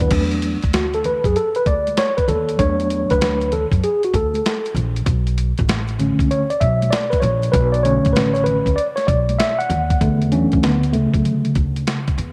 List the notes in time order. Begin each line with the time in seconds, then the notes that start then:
0.00 B4, kick, closed hi-hat, maracas
0.11 E2 F#3 A3 D4, kick, closed hi-hat, crash, maracas
0.31 closed hi-hat, maracas
0.42 closed hi-hat, maracas
0.62 D2, kick, closed hi-hat, maracas
0.73 F#4, snare, closed hi-hat, low conga, maracas
0.93 A4, closed hi-hat, maracas
1.04 B4, closed hi-hat, low conga, maracas
1.24 F#2 G#4, kick, closed hi-hat, maracas
1.36 A4, closed hi-hat, maracas
1.55 B4, closed hi-hat, maracas
1.66 D2 D5, kick, closed hi-hat, maracas
1.87 closed hi-hat, high conga, maracas
1.97 C#5, snare, closed hi-hat, maracas
2.17 B4, kick, closed hi-hat, maracas
2.28 D#2 A4, closed hi-hat, low conga, maracas
2.49 closed hi-hat, maracas
2.58 E2 F#3 A3 D4 C#5, kick, closed hi-hat, maracas
2.80 closed hi-hat, maracas
2.90 closed hi-hat, maracas
3.10 D2 B4, kick, closed hi-hat, maracas
3.21 snare, closed hi-hat, low conga, maracas
3.41 closed hi-hat, maracas
3.52 A4, closed hi-hat, low conga, maracas
3.71 F#2, kick, closed hi-hat, maracas
3.84 G#4, closed hi-hat, maracas
4.03 F#4, closed hi-hat, maracas
4.13 D2 A4, kick, closed hi-hat, maracas
4.34 closed hi-hat, high conga, maracas
4.45 snare, closed hi-hat, maracas
4.65 closed hi-hat, maracas
4.75 A#1, closed hi-hat, low conga, maracas
4.96 closed hi-hat, maracas
5.06 B1, kick, closed hi-hat, maracas
5.27 closed hi-hat, maracas
5.38 closed hi-hat, maracas
5.58 A1, kick, closed hi-hat, maracas
5.68 snare, closed hi-hat, low conga, maracas
5.87 closed hi-hat, maracas
5.99 D3 A3 C#4, closed hi-hat, low conga, maracas
6.19 C#2, kick, closed hi-hat, maracas
6.31 C#5, closed hi-hat, maracas
6.50 D5, closed hi-hat, maracas
6.60 B1 E5, kick, closed hi-hat, maracas
6.82 closed hi-hat, high conga, maracas
6.91 D5, snare, closed hi-hat, maracas
7.10 B4, kick, closed hi-hat, maracas
7.20 A#1 C#5, closed hi-hat, low conga, maracas
7.42 closed hi-hat, maracas
7.52 B1 B4, kick, closed hi-hat, maracas
7.72 D5, closed hi-hat, maracas
7.83 D3 A3 C#4 C#5, closed hi-hat, maracas
8.05 A1, kick, closed hi-hat, maracas
8.13 B4, snare, closed hi-hat, low conga, maracas
8.34 C#5, closed hi-hat, maracas
8.44 B4, closed hi-hat, low conga, maracas
8.66 D2, kick, closed hi-hat, maracas
8.76 D5, closed hi-hat, maracas
8.96 C#5, snare, closed hi-hat, maracas
9.07 B1 D5, kick, closed hi-hat, maracas
9.29 closed hi-hat, high conga, maracas
9.39 E5, snare, closed hi-hat, maracas
9.59 F#5, closed hi-hat, maracas
9.70 D#2, closed hi-hat, low conga, maracas
9.90 kick, closed hi-hat, maracas
10.01 E2 D3 A3, kick, closed hi-hat
10.22 closed hi-hat
10.32 E3 F#3 A3 C#4 D4, closed hi-hat
10.52 D2, kick, closed hi-hat
10.63 D3 B3, snare, closed hi-hat
10.83 closed hi-hat
10.93 C#3 A3, closed hi-hat
11.14 F#2, kick, closed hi-hat
11.25 D3 F#3 A3, closed hi-hat
11.45 closed hi-hat
11.55 D2, kick, closed hi-hat
11.76 closed hi-hat
11.87 snare, closed hi-hat
12.08 kick, closed hi-hat
12.18 E2, closed hi-hat